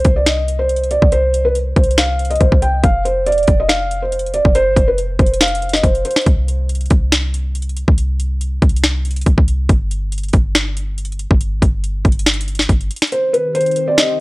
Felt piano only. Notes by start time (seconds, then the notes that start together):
Already playing: C5
0.16 D5
0.26 D#5
0.59 C5
0.91 D5
1.12 C5
1.45 B4
1.77 C5
1.98 F5
2.30 D#5
2.40 C5
2.62 G5
2.84 F5
3.05 C5
3.26 D5
3.60 D#5
3.69 F5
4.02 C5
4.34 D5
4.55 C5
4.88 B4
5.19 C5
5.42 F5
5.73 D#5
5.84 C5
6.05 C5
13.12 C5
13.33 B4
13.55 C5
13.88 D5
13.97 D#5